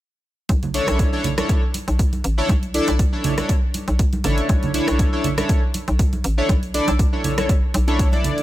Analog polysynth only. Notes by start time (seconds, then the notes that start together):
0.74 D4 E4 A4 C#5
1.12 D4 E4 A4 C#5
1.37 D4 E4 A4 C#5
2.38 D4 E4 A4 C#5
2.74 D4 E4 A4 D5
3.13 D4 E4 A4 C#5
3.38 D4 E4 A4 C#5
4.24 D4 E4 A4 C#5
4.74 D4 E4 A4 C#5
5.13 D4 E4 A4 C#5
5.38 D4 E4 A4 C#5
6.38 D4 E4 A4 C#5
6.74 D4 E4 A4 D5
7.12 D4 E4 A4 C#5
7.37 D4 E4 A4 C#5
7.87 D4 E4 A4 C#5
8.12 D4 E4 A4 D5